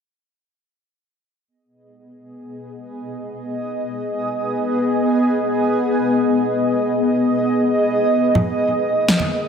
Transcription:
1.48 ambient pad B3 G#4 D#5
8.24 ambient pad A#3 G4
8.35 low conga
9.08 snare
9.20 high conga

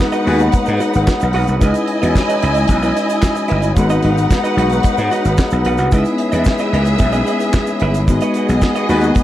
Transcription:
Already playing: tine electric piano G#3 B3 D#4 F#4 B4, string section D#4 B4 F#5, glass harmonica G#4 F#5 B5 D#6
0.00 kick, snare, clap
0.12 clean electric guitar F#4 B4 D#5, closed hi-hat, shaker
0.25 slap bass D#2, tine electric piano G#3 B3 D#4 F#4 B4, clean electric guitar F#4 B4 F#5, horn section F#4 G#4 B4, open hi-hat
0.39 tine electric piano G#3 A#3 D#4 F#4 C#5, muted clean electric guitar stroke, closed hi-hat, shaker
0.47 tine electric piano B3
0.52 kick, closed hi-hat, shaker
0.66 slap bass G#2, muted clean electric guitar stroke, closed hi-hat, shaker
0.80 clean electric guitar F#4 B4 D#5, closed hi-hat, shaker
0.93 slap bass G#1, muted clean electric guitar stroke, closed hi-hat, shaker
1.07 muted clean electric guitar stroke, kick, snare, clap, shaker
1.20 slap bass B1, muted clean electric guitar stroke, closed hi-hat, shaker
1.33 slap bass B1, clean electric guitar F#4 B4 F#5, open hi-hat
1.47 slap bass C2, clean electric guitar F#4 B4 F#5, closed hi-hat, shaker
1.60 slap bass C#2, tine electric piano G#3 C#4 D#4 E4 B4, string section E4 D#5 G#5, clean electric guitar E4 B4 D#5, glass harmonica C#5 D#5, kick, closed hi-hat, shaker
1.74 muted clean electric guitar stroke, closed hi-hat, shaker
1.87 muted clean electric guitar stroke, closed hi-hat
2.01 slap bass E2, tine electric piano G#3 C#4 D#4 E4 F#4, clean electric guitar E4 B4 D#5, closed hi-hat, shaker
2.15 muted clean electric guitar stroke, kick, snare, clap, shaker
2.28 tine electric piano G#3 C#4 D#4 E4 C#5, clean electric guitar E4 B4 D#5, closed hi-hat, shaker
2.42 slap bass C#2, clean electric guitar E4 B4 E5, closed hi-hat
2.54 muted clean electric guitar stroke, closed hi-hat, shaker
2.68 slap bass B1, muted clean electric guitar stroke, kick, closed hi-hat, shaker
2.83 clean electric guitar E4 B4 D#5, closed hi-hat, shaker
2.96 clean electric guitar E4 B4 D#5, closed hi-hat, shaker
3.09 muted clean electric guitar stroke, closed hi-hat, shaker
3.22 kick, snare, clap, shaker
3.35 muted clean electric guitar stroke, closed hi-hat, shaker
3.48 slap bass G1, clean electric guitar E4 B4 E5, closed hi-hat
3.62 muted clean electric guitar stroke, closed hi-hat, shaker
3.76 slap bass G#1, tine electric piano G#3 B3 D#4 F#4 A4, string section D#4 B4 F#5, glass harmonica G#4 F#5, muted clean electric guitar stroke, kick, closed hi-hat, shaker
3.85 tine electric piano B4
3.89 clean electric guitar F#4 B4 D#5, closed hi-hat, shaker
4.03 slap bass G#1, clean electric guitar F#4 B4 D#5, closed hi-hat
4.17 muted clean electric guitar stroke, closed hi-hat, shaker
4.31 muted clean electric guitar stroke, kick, snare, clap, shaker
4.44 clean electric guitar F#4 B4 D#5, closed hi-hat, shaker
4.57 slap bass B1, tine electric piano G#3 B3 D#4 F#4 C#5, clean electric guitar F#4 B4 F#5, closed hi-hat
4.70 tine electric piano G#3 B3 D#4 F#4 B4, muted clean electric guitar stroke, closed hi-hat, shaker
4.83 kick, closed hi-hat, shaker
4.97 slap bass G#2, muted clean electric guitar stroke, closed hi-hat, shaker
5.11 clean electric guitar F#4 B4 D#5, closed hi-hat, shaker
5.25 slap bass G#1, muted clean electric guitar stroke, closed hi-hat, shaker
5.38 tine electric piano B4, muted clean electric guitar stroke, kick, snare, clap, shaker
5.51 slap bass B1, muted clean electric guitar stroke, closed hi-hat, shaker
5.65 slap bass B1, clean electric guitar F#4 B4 F#5, closed hi-hat
5.78 slap bass C2, clean electric guitar F#4 B4 F#5, closed hi-hat, shaker
5.92 slap bass C#2, tine electric piano G#3 C#4 D#4 E4 B4, string section B3 G#4 E5, clean electric guitar E4 B4 D#5, glass harmonica C#5 E5 B5, kick, closed hi-hat, shaker
6.05 muted clean electric guitar stroke, closed hi-hat, shaker
6.18 muted clean electric guitar stroke, closed hi-hat
6.32 slap bass E2, tine electric piano G#3 C#4 D#4 E4 B4, clean electric guitar E4 B4 D#5, closed hi-hat, shaker
6.44 kick, snare, clap, shaker
6.58 tine electric piano G#3 B3 C#4 E4, clean electric guitar E4 B4 D#5, closed hi-hat, shaker
6.62 tine electric piano B4
6.73 slap bass C#2, clean electric guitar E4 B4 E5, closed hi-hat
6.85 muted clean electric guitar stroke, closed hi-hat, shaker
6.98 slap bass B1, muted clean electric guitar stroke, kick, closed hi-hat, shaker
7.12 clean electric guitar E4 B4 D#5, closed hi-hat, shaker
7.26 clean electric guitar E4 B4 D#5, closed hi-hat, shaker
7.40 muted clean electric guitar stroke, closed hi-hat, shaker
7.53 kick, snare, clap, shaker
7.67 muted clean electric guitar stroke, closed hi-hat, shaker
7.80 slap bass G1, clean electric guitar E4 B4 E5, closed hi-hat
7.94 muted clean electric guitar stroke, closed hi-hat, shaker
8.08 slap bass G#1, tine electric piano G#3 B3 D#4 F#4 B4, string section B3 G#4 D#5, glass harmonica G#4 F#5, muted clean electric guitar stroke, kick, closed hi-hat, shaker
8.21 clean electric guitar F#4 B4 D#5, closed hi-hat, shaker
8.34 clean electric guitar F#4 B4 D#5, closed hi-hat, shaker
8.49 slap bass B1, muted clean electric guitar stroke, closed hi-hat, shaker
8.61 muted clean electric guitar stroke, kick, snare, clap, shaker
8.75 clean electric guitar F#4 B4 D#5, closed hi-hat, shaker
8.89 slap bass D#2, tine electric piano G#3 B3 D#4 F#4 B4, clean electric guitar F#4 B4 F#5, horn section F#4 G#4 B4, open hi-hat, shaker
9.01 tine electric piano G#3 B3 D#4 F#4 B4, muted clean electric guitar stroke, closed hi-hat, shaker
9.15 kick, closed hi-hat, shaker

